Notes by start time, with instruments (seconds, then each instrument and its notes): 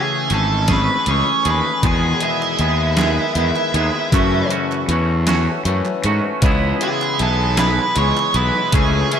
Already playing: clean electric guitar C#3 E3 A3 C#4 G#4, lead electric guitar G#4
0.30 fingered electric bass G#1, clean electric guitar E3 A3 C#4 G#4, lead electric guitar A4, closed hi-hat
0.68 clean electric guitar E3 A3 C#4 G#4, kick, snare, closed hi-hat
0.72 lead electric guitar B4
1.05 fingered electric bass C#2, clean electric guitar E3 A3 C#4 G#4, closed hi-hat
1.11 lead electric guitar C#5
1.45 fingered electric bass D#2, clean electric guitar E3 A3 C#4 G#4, closed hi-hat
1.50 lead electric guitar B4
1.82 clean electric guitar E2 B2 D#3 G#3 B3 G#4, fingered electric bass E2, lead electric guitar G#4, kick, clap, closed hi-hat
2.21 clean electric guitar D#3 G#3 B3 G#4, lead electric guitar E4, clap, closed hi-hat
2.42 clap
2.59 fingered electric bass D#2, clean electric guitar D#3 G#3 B3 G#4, clap, closed hi-hat
2.97 clean electric guitar D#3 G#3 B3 G#4, snare, clap, closed hi-hat
3.35 fingered electric bass E2, clean electric guitar D#3 G#3 B3 G#4, closed hi-hat
3.56 clap
3.74 fingered electric bass D#2, clean electric guitar D#3 G#3 B3 G#4, clap, closed hi-hat
4.12 clean electric guitar F#2 C#3 E3 A3 C#4 F#4, fingered electric bass F#2, kick, clap, closed hi-hat
4.50 clean electric guitar E3 A3 C#4 F#4, clap, closed hi-hat
4.72 clap
4.88 fingered electric bass E2, clean electric guitar E3 A3 C#4 F#4, clap, closed hi-hat
5.26 clean electric guitar E3 A3 C#4 F#4, snare, clap, closed hi-hat
5.64 fingered electric bass F#2, clean electric guitar E3 A3 C#4 F#4, closed hi-hat
5.85 clap
6.04 fingered electric bass G#2, clean electric guitar E3 A3 C#4 F#4, clap, closed hi-hat
6.41 fingered electric bass C#2, clean electric guitar C#3 E3 G#3 B3 G#4, kick, clap, closed hi-hat
6.45 clean electric guitar E4
6.79 clean electric guitar E3 G#3 B3 E4 G#4, lead electric guitar G#4, clap, closed hi-hat
7.02 clap
7.18 fingered electric bass B1, clean electric guitar E3 G#3 B3 G#4, lead electric guitar A4, clap, closed hi-hat
7.23 clean electric guitar E4
7.57 clean electric guitar E3 G#3 B3 E4 G#4, lead electric guitar B4, snare, clap, closed hi-hat
7.95 fingered electric bass C#2, clean electric guitar E3 G#3 B3 G#4, lead electric guitar C#5, closed hi-hat
8.17 clap
8.33 fingered electric bass B1, clean electric guitar G#3 B3 E4 G#4, lead electric guitar B4, closed hi-hat
8.37 clean electric guitar E3, clap
8.72 fingered electric bass C#2, clean electric guitar C#3 E3 A3 C#4 G#4, lead electric guitar G#4, kick, clap, closed hi-hat
9.11 clean electric guitar E3 A3 C#4 G#4, lead electric guitar E4, closed hi-hat